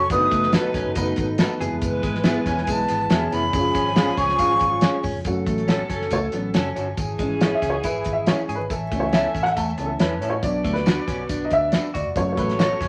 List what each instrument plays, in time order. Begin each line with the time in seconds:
Already playing: tonewheel organ A4, flute C#6
0.09 fingered electric bass F#1, tonewheel organ D#3 B3, horn section F#3 D#4 B4, upright piano A3 B3 D4 F#4 B4, flute D#6, kick, closed hi-hat, tambourine
0.16 upright piano D#4
0.31 fingered electric bass F#1, clean electric guitar A3, kick, closed hi-hat, tambourine
0.43 snare
0.53 upright piano A3 B3 D#4 F#4 B4, clean electric guitar B3 D#4 A4, snare, closed hi-hat, tambourine
0.74 fingered electric bass B1, clean electric guitar C#4, kick, snare, closed hi-hat, tambourine
0.85 fingered electric bass F#1
0.95 fingered electric bass F#1, upright piano A3 B3 D#4 F#4 B4, clean electric guitar D#4, kick, closed hi-hat, tambourine
1.16 fingered electric bass G#1, kick, closed hi-hat, tambourine
1.38 upright piano A3 B3 D#4 F#4 B4, clean electric guitar B3 D#4 A4, snare, closed hi-hat, tambourine
1.60 fingered electric bass F#1, tonewheel organ E3 G#3 B3, horn section G#3 E4 B4, upright piano B3 E4 G#4, clean electric guitar G#4, closed hi-hat, tambourine
1.71 fingered electric bass F1
1.82 fingered electric bass F#1, kick, closed hi-hat, tambourine
2.03 fingered electric bass G#1, clean electric guitar G#3, kick, closed hi-hat, tambourine
2.15 snare
2.24 upright piano B3 E4 G#4, clean electric guitar B3 E4 G#4, snare, closed hi-hat, tambourine
2.46 fingered electric bass E1, clean electric guitar C#4, flute G#5, kick, snare, closed hi-hat, tambourine
2.58 snare
2.62 flute G#5
2.66 fingered electric bass B1, clean electric guitar G#3, upright piano G#3 B3 E4, kick, closed hi-hat, tambourine
2.71 flute A5
2.88 fingered electric bass G#1, clean electric guitar B3, closed hi-hat, tambourine
3.09 fingered electric bass E1, upright piano B3 E4 F#4, clean electric guitar B3 C#4 E4 G#4, snare, closed hi-hat, tambourine
3.17 upright piano G#4
3.32 fingered electric bass F1, clean electric guitar B3 E4 G#4, flute B5, closed hi-hat, tambourine
3.53 fingered electric bass F#1, horn section F3 C#4 G#4, tonewheel organ F3 C#4, upright piano C#4 E4 G#4, kick, closed hi-hat, tambourine
3.59 upright piano F4
3.75 fingered electric bass G#1, clean electric guitar C#4, kick, closed hi-hat, tambourine
3.95 clean electric guitar B3 C#4 F4 G#4, upright piano C#4 F4 G#4, snare, closed hi-hat, tambourine
4.17 fingered electric bass C#2, clean electric guitar C#4, flute C#6, kick, closed hi-hat, tambourine
4.29 snare
4.38 fingered electric bass G#1, upright piano C#4 F4 G#4, clean electric guitar F4, kick, closed hi-hat, tambourine
4.60 fingered electric bass G#1, kick, closed hi-hat, tambourine
4.81 upright piano C#4 F4 G#4, clean electric guitar C#4 F4 G#4, snare, closed hi-hat, tambourine
5.03 fingered electric bass G#2, clean electric guitar C#4, kick, open hi-hat, tambourine
5.15 fingered electric bass F1
5.25 fingered electric bass F#1, horn section F#3 C#4 A4, upright piano F#3 A3 C#4 F#4, kick, closed hi-hat, tambourine
5.46 fingered electric bass A1, clean electric guitar A3, kick, closed hi-hat, tambourine
5.58 closed hi-hat
5.68 clean electric guitar B3 C#4 F#4 A4, upright piano A4, snare, closed hi-hat, tambourine
5.89 fingered electric bass F#1, clean electric guitar C#4, kick, snare, closed hi-hat, tambourine
6.02 snare
6.11 fingered electric bass C#2, clean electric guitar A3, upright piano C#5, kick, closed hi-hat, tambourine
6.32 fingered electric bass A1, upright piano F#3 A3 C#4, clean electric guitar B3, closed hi-hat, tambourine
6.54 fingered electric bass F#1, clean electric guitar C#4 F#4 A4, snare, closed hi-hat, tambourine
6.75 fingered electric bass G1, clean electric guitar C#4 F#4 A4, closed hi-hat, tambourine
6.97 fingered electric bass G#1, horn section E3 C#4 G#4, kick, closed hi-hat, tambourine
7.19 fingered electric bass G#1, upright piano E3 G#3 C#4, clean electric guitar G#3, kick, closed hi-hat, tambourine
7.41 clean electric guitar B3 C#4 E4 G#4, upright piano C#5, snare, closed hi-hat, tambourine
7.55 upright piano E5
7.62 fingered electric bass C#2, clean electric guitar C#4, kick, closed hi-hat, tambourine
7.70 upright piano C#5
7.83 fingered electric bass G#1, clean electric guitar E4, upright piano B4, kick, closed hi-hat, tambourine
8.04 fingered electric bass G#1, kick, closed hi-hat, tambourine
8.13 upright piano E5
8.26 upright piano E3 G#3 C#4 C#5, clean electric guitar C#4 E4 G#4, snare, closed hi-hat, tambourine
8.48 fingered electric bass G#2, clean electric guitar G#4, closed hi-hat, tambourine
8.55 fingered electric bass G#1, upright piano B4
8.70 fingered electric bass A1, horn section C#4 A4 E5, upright piano A4, kick, closed hi-hat, tambourine
8.92 fingered electric bass C#2, upright piano E3 A3 C#4, clean electric guitar A3, kick, closed hi-hat, tambourine
9.00 upright piano C#5
9.13 clean electric guitar B3 C#4 E4 A4, upright piano E5, snare, closed hi-hat, tambourine
9.35 fingered electric bass A1, clean electric guitar C#4, kick, closed hi-hat, tambourine
9.43 upright piano F#5, snare, closed hi-hat
9.56 fingered electric bass E2, clean electric guitar A3, upright piano A5, kick, closed hi-hat, tambourine
9.78 fingered electric bass C#2, upright piano E3 A3 C#4, clean electric guitar B3, closed hi-hat, tambourine
9.86 upright piano A4
9.99 fingered electric bass E2, clean electric guitar C#4 E4 A4, upright piano B4, snare, closed hi-hat, tambourine
10.21 fingered electric bass A2, clean electric guitar C#4 E4 A4, closed hi-hat, tambourine
10.29 upright piano C#5
10.42 fingered electric bass B1, upright piano F#3 B3 D4 D5, horn section B3 F#4 D5, kick, closed hi-hat, tambourine
10.64 fingered electric bass D2, clean electric guitar A3, kick, closed hi-hat, tambourine
10.73 upright piano B4, snare, closed hi-hat
10.86 clean electric guitar B3 D4 F#4 B4, snare, closed hi-hat, tambourine
11.08 fingered electric bass B1, clean electric guitar C#4, kick, snare, closed hi-hat, tambourine
11.29 fingered electric bass B1, clean electric guitar D4, kick, closed hi-hat, tambourine
11.45 upright piano D#5
11.50 fingered electric bass D2, upright piano E5, kick, closed hi-hat, tambourine
11.72 clean electric guitar D4 F#4 B4, snare, closed hi-hat, tambourine
11.94 fingered electric bass D2, clean electric guitar F#4, upright piano D5, kick, closed hi-hat, tambourine
12.05 fingered electric bass F1
12.15 fingered electric bass F#1, upright piano F#3 A3 C#4 C#5, tonewheel organ F#3 C#4 A4, horn section A3 F#4 C#5, kick, closed hi-hat, tambourine
12.32 upright piano C#5
12.37 fingered electric bass A1, clean electric guitar A3, upright piano B4, kick, closed hi-hat, tambourine
12.49 snare, closed hi-hat
12.59 clean electric guitar B3 F#4 A4 C#5, upright piano C#5, snare, closed hi-hat, tambourine
12.81 fingered electric bass F#1, clean electric guitar C#4, kick, snare, closed hi-hat, tambourine